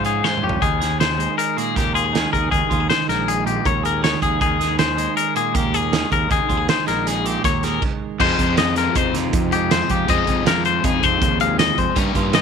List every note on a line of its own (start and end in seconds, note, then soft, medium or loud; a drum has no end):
0.00 0.22 G#2 medium
0.00 0.35 G#2 medium
0.00 0.60 F3 medium
0.00 0.62 F4 soft
0.04 0.43 C#4 soft
0.04 0.24 G#4 medium
0.04 closed hi-hat medium
0.23 0.59 G#2 medium
0.23 0.43 C5 medium
0.23 snare soft
0.37 mid tom medium
0.43 0.59 F2 medium
0.43 0.65 C#4 soft
0.43 0.62 G4 medium
0.49 floor tom medium
0.62 1.27 D#2 medium
0.62 2.13 D#3 medium
0.62 1.00 G#4 medium
0.62 kick medium
0.62 closed hi-hat medium
0.81 1.77 G#4 medium
0.81 snare soft
0.81 closed hi-hat medium
1.00 1.38 C5 medium
1.00 snare medium
1.00 closed hi-hat medium
1.18 3.08 G#3 medium
1.18 closed hi-hat medium
1.38 1.57 A#4 medium
1.38 closed hi-hat medium
1.57 2.14 A#2 medium
1.57 1.76 G#4 medium
1.57 closed hi-hat medium
1.76 2.25 D#2 medium
1.76 1.95 G4 medium
1.76 1.94 A#4 soft
1.76 kick medium
1.76 snare soft
1.76 closed hi-hat medium
1.94 2.04 F4 medium
1.94 2.32 G#4 medium
1.94 closed hi-hat medium
2.04 2.31 G#4 soft
2.13 2.51 D#3 medium
2.13 snare medium
2.13 closed hi-hat medium
2.32 2.49 D#2 medium
2.32 2.70 G#4 medium
2.32 2.51 A#4 medium
2.32 kick medium
2.32 closed hi-hat medium
2.51 2.60 D#2 medium
2.51 4.02 D#3 medium
2.51 2.89 G#4 medium
2.51 kick medium
2.51 closed hi-hat medium
2.70 2.87 D#2 medium
2.70 2.80 F4 medium
2.70 kick medium
2.70 closed hi-hat soft
2.80 3.65 G#4 soft
2.90 3.09 C5 medium
2.90 snare medium
2.90 closed hi-hat medium
3.08 3.57 A#1 medium
3.08 4.97 G#3 medium
3.08 3.28 A#4 medium
3.08 snare soft
3.08 closed hi-hat soft
3.28 3.46 G#4 medium
3.28 closed hi-hat medium
3.46 4.03 A#2 medium
3.46 3.66 G4 medium
3.46 closed hi-hat soft
3.65 4.14 D#2 medium
3.65 3.83 A#4 medium
3.65 3.85 C#5 medium
3.65 kick loud
3.65 closed hi-hat medium
3.83 4.22 G#4 medium
3.83 4.03 A#4 medium
3.83 closed hi-hat medium
4.02 4.40 D#3 medium
4.02 4.22 C#5 medium
4.02 snare medium
4.02 closed hi-hat medium
4.22 4.39 D#2 medium
4.22 4.59 G#4 medium
4.22 4.40 G#4 medium
4.22 kick medium
4.22 closed hi-hat medium
4.41 5.06 D#2 medium
4.41 5.91 D#3 medium
4.41 4.79 G#4 medium
4.41 kick loud
4.41 closed hi-hat medium
4.60 5.54 G#4 medium
4.60 snare soft
4.60 closed hi-hat medium
4.79 5.16 C5 medium
4.79 snare medium
4.79 closed hi-hat medium
4.97 6.85 G#3 medium
4.97 closed hi-hat medium
5.17 5.36 A#4 medium
5.17 closed hi-hat medium
5.35 5.93 A#2 medium
5.35 5.56 G#4 medium
5.35 closed hi-hat medium
5.54 6.03 D#2 medium
5.54 5.74 G4 medium
5.54 5.73 A#4 medium
5.54 kick loud
5.54 closed hi-hat medium
5.74 6.10 G#4 medium
5.74 6.12 G#4 medium
5.74 closed hi-hat medium
5.92 6.28 D#3 medium
5.92 snare medium
5.92 closed hi-hat medium
6.11 6.28 D#2 medium
6.11 6.28 G#4 medium
6.11 6.31 A#4 medium
6.11 kick medium
6.11 closed hi-hat medium
6.29 6.39 D#2 medium
6.29 8.57 D#3 medium
6.29 6.69 G#4 medium
6.29 kick medium
6.29 closed hi-hat medium
6.49 6.66 D#2 medium
6.49 6.57 F4 medium
6.49 kick medium
6.49 closed hi-hat medium
6.57 7.43 G#4 soft
6.69 6.88 C5 medium
6.69 snare loud
6.69 closed hi-hat medium
6.87 7.36 A#1 medium
6.87 9.53 G#3 medium
6.87 7.07 A#4 medium
6.87 snare soft
6.87 closed hi-hat medium
7.07 7.26 G#4 medium
7.07 snare soft
7.07 closed hi-hat medium
7.25 7.82 A#2 medium
7.25 7.45 G4 medium
7.25 closed hi-hat medium
7.44 7.77 D#2 medium
7.44 7.63 A#4 medium
7.44 7.64 C#5 medium
7.44 kick loud
7.44 snare soft
7.44 closed hi-hat medium
7.63 7.80 G#4 medium
7.63 7.82 A#4 medium
7.63 snare soft
7.63 closed hi-hat medium
7.82 kick loud
7.82 crash medium
8.20 9.70 F2 medium
8.20 8.36 F2 loud
8.20 10.08 F3 medium
8.20 10.09 C4 loud
8.20 8.96 D#4 medium
8.20 10.10 F4 medium
8.20 10.09 G#4 loud
8.20 8.58 C5 loud
8.20 kick loud
8.20 crash loud
8.39 8.87 F2 medium
8.39 kick medium
8.39 closed hi-hat medium
8.57 10.21 F3 medium
8.57 8.77 D#5 medium
8.57 snare loud
8.57 closed hi-hat medium
8.76 8.96 A#4 medium
8.76 snare soft
8.76 closed hi-hat medium
8.95 9.28 F2 medium
8.95 9.72 D#4 medium
8.95 9.14 C5 medium
8.95 kick loud
8.95 closed hi-hat loud
9.14 10.06 C3 medium
9.14 snare soft
9.14 closed hi-hat medium
9.33 9.81 F2 medium
9.33 kick loud
9.33 closed hi-hat medium
9.52 11.40 G#3 medium
9.52 9.71 G4 medium
9.52 closed hi-hat medium
9.71 10.08 F2 medium
9.71 9.82 C4 medium
9.71 9.90 C5 medium
9.71 snare loud
9.71 closed hi-hat medium
9.82 10.09 D#4 soft
9.90 10.06 F2 medium
9.90 10.09 G4 medium
9.90 10.12 G4 medium
9.90 kick medium
9.90 closed hi-hat medium
10.08 10.25 F2 loud
10.08 11.77 F2 medium
10.08 11.96 F3 medium
10.08 11.96 C4 medium
10.08 10.18 C4 medium
10.08 11.97 F4 medium
10.08 11.97 G#4 loud
10.08 10.47 D#5 medium
10.08 kick loud
10.08 closed hi-hat loud
10.18 10.84 D#4 soft
10.27 10.44 F2 medium
10.27 kick medium
10.27 closed hi-hat medium
10.46 10.78 F2 medium
10.46 11.99 F3 medium
10.46 10.65 A#4 medium
10.46 snare loud
10.46 closed hi-hat loud
10.65 10.85 C5 medium
10.65 closed hi-hat medium
10.84 11.00 F2 medium
10.84 11.96 D#4 medium
10.84 11.03 G#4 medium
10.84 kick loud
10.84 closed hi-hat loud
11.03 11.19 F2 medium
11.03 11.95 C3 medium
11.03 11.40 C5 medium
11.03 kick medium
11.03 closed hi-hat medium
11.21 11.69 D#2 loud
11.21 kick loud
11.21 closed hi-hat loud
11.40 11.97 G#3 medium
11.40 11.59 F5 medium
11.40 closed hi-hat medium
11.59 11.78 D#5 medium
11.59 snare loud
11.59 closed hi-hat medium
11.78 11.86 F2 medium
11.78 11.96 F2 medium
11.78 11.97 C5 medium
11.78 kick medium
11.78 closed hi-hat medium
11.96 12.42 G2 medium
11.96 12.12 G2 loud
11.96 12.42 G3 medium
11.96 12.42 A#3 medium
11.96 12.42 C#4 medium
11.96 12.42 D#4 loud
11.96 12.42 A#4 medium
11.96 12.42 C#5 loud
11.96 kick loud
11.96 closed hi-hat medium
12.15 12.42 G2 loud
12.15 12.42 F4 medium
12.15 kick medium
12.15 closed hi-hat medium
12.33 12.42 D#3 medium
12.33 12.42 D#5 medium
12.33 snare loud
12.33 closed hi-hat medium